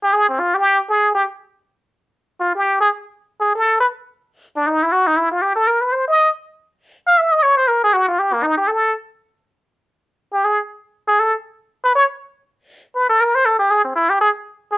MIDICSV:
0, 0, Header, 1, 2, 480
1, 0, Start_track
1, 0, Tempo, 251151
1, 218, Time_signature, 4, 2, 24, 8
1, 28242, End_track
2, 0, Start_track
2, 0, Title_t, "Muted trumpet"
2, 0, Program_c, 0, 59
2, 62, Note_on_c, 0, 67, 90
2, 253, Note_on_c, 0, 68, 84
2, 282, Note_off_c, 0, 67, 0
2, 526, Note_off_c, 0, 68, 0
2, 558, Note_on_c, 0, 60, 57
2, 756, Note_on_c, 0, 65, 73
2, 785, Note_off_c, 0, 60, 0
2, 1040, Note_on_c, 0, 67, 93
2, 1069, Note_off_c, 0, 65, 0
2, 1495, Note_off_c, 0, 67, 0
2, 1712, Note_on_c, 0, 68, 69
2, 2134, Note_off_c, 0, 68, 0
2, 2196, Note_on_c, 0, 67, 75
2, 2353, Note_off_c, 0, 67, 0
2, 4595, Note_on_c, 0, 65, 58
2, 4840, Note_off_c, 0, 65, 0
2, 4877, Note_on_c, 0, 67, 62
2, 5303, Note_off_c, 0, 67, 0
2, 5367, Note_on_c, 0, 68, 78
2, 5518, Note_off_c, 0, 68, 0
2, 6504, Note_on_c, 0, 68, 65
2, 6756, Note_off_c, 0, 68, 0
2, 6782, Note_on_c, 0, 69, 77
2, 7216, Note_off_c, 0, 69, 0
2, 7264, Note_on_c, 0, 71, 79
2, 7369, Note_off_c, 0, 71, 0
2, 8722, Note_on_c, 0, 62, 76
2, 8918, Note_on_c, 0, 63, 65
2, 8947, Note_off_c, 0, 62, 0
2, 9225, Note_on_c, 0, 64, 75
2, 9254, Note_off_c, 0, 63, 0
2, 9402, Note_on_c, 0, 66, 72
2, 9431, Note_off_c, 0, 64, 0
2, 9687, Note_on_c, 0, 63, 76
2, 9715, Note_off_c, 0, 66, 0
2, 9876, Note_on_c, 0, 64, 67
2, 9904, Note_off_c, 0, 63, 0
2, 10142, Note_off_c, 0, 64, 0
2, 10159, Note_on_c, 0, 65, 56
2, 10354, Note_on_c, 0, 67, 69
2, 10383, Note_off_c, 0, 65, 0
2, 10610, Note_off_c, 0, 67, 0
2, 10622, Note_on_c, 0, 69, 77
2, 10845, Note_on_c, 0, 70, 62
2, 10873, Note_off_c, 0, 69, 0
2, 11104, Note_on_c, 0, 71, 69
2, 11133, Note_off_c, 0, 70, 0
2, 11318, Note_on_c, 0, 72, 66
2, 11346, Note_off_c, 0, 71, 0
2, 11583, Note_off_c, 0, 72, 0
2, 11611, Note_on_c, 0, 75, 82
2, 12033, Note_off_c, 0, 75, 0
2, 13520, Note_on_c, 0, 77, 90
2, 13727, Note_on_c, 0, 76, 74
2, 13756, Note_off_c, 0, 77, 0
2, 13996, Note_on_c, 0, 75, 82
2, 14024, Note_off_c, 0, 76, 0
2, 14199, Note_on_c, 0, 73, 76
2, 14227, Note_off_c, 0, 75, 0
2, 14463, Note_off_c, 0, 73, 0
2, 14477, Note_on_c, 0, 72, 77
2, 14675, Note_on_c, 0, 70, 65
2, 14704, Note_off_c, 0, 72, 0
2, 14942, Note_off_c, 0, 70, 0
2, 14982, Note_on_c, 0, 68, 79
2, 15164, Note_on_c, 0, 66, 68
2, 15193, Note_off_c, 0, 68, 0
2, 15426, Note_off_c, 0, 66, 0
2, 15454, Note_on_c, 0, 65, 71
2, 15653, Note_on_c, 0, 67, 80
2, 15682, Note_off_c, 0, 65, 0
2, 15920, Note_on_c, 0, 58, 57
2, 15949, Note_off_c, 0, 67, 0
2, 16114, Note_on_c, 0, 63, 72
2, 16143, Note_off_c, 0, 58, 0
2, 16373, Note_off_c, 0, 63, 0
2, 16385, Note_on_c, 0, 67, 76
2, 16583, Note_on_c, 0, 69, 67
2, 16612, Note_off_c, 0, 67, 0
2, 17045, Note_off_c, 0, 69, 0
2, 19747, Note_on_c, 0, 67, 73
2, 19960, Note_on_c, 0, 68, 66
2, 19989, Note_off_c, 0, 67, 0
2, 20225, Note_off_c, 0, 68, 0
2, 21170, Note_on_c, 0, 68, 81
2, 21396, Note_on_c, 0, 69, 72
2, 21425, Note_off_c, 0, 68, 0
2, 21663, Note_off_c, 0, 69, 0
2, 22636, Note_on_c, 0, 71, 86
2, 22795, Note_off_c, 0, 71, 0
2, 22846, Note_on_c, 0, 73, 81
2, 23003, Note_off_c, 0, 73, 0
2, 24757, Note_on_c, 0, 71, 74
2, 25004, Note_off_c, 0, 71, 0
2, 25018, Note_on_c, 0, 69, 88
2, 25239, Note_on_c, 0, 70, 80
2, 25268, Note_off_c, 0, 69, 0
2, 25515, Note_on_c, 0, 72, 94
2, 25544, Note_off_c, 0, 70, 0
2, 25714, Note_on_c, 0, 69, 73
2, 25743, Note_off_c, 0, 72, 0
2, 25967, Note_off_c, 0, 69, 0
2, 25978, Note_on_c, 0, 67, 84
2, 26193, Note_on_c, 0, 68, 79
2, 26222, Note_off_c, 0, 67, 0
2, 26454, Note_off_c, 0, 68, 0
2, 26466, Note_on_c, 0, 60, 50
2, 26671, Note_on_c, 0, 64, 72
2, 26700, Note_off_c, 0, 60, 0
2, 26946, Note_on_c, 0, 67, 81
2, 26974, Note_off_c, 0, 64, 0
2, 27120, Note_off_c, 0, 67, 0
2, 27159, Note_on_c, 0, 68, 78
2, 27317, Note_off_c, 0, 68, 0
2, 28132, Note_on_c, 0, 68, 70
2, 28242, Note_off_c, 0, 68, 0
2, 28242, End_track
0, 0, End_of_file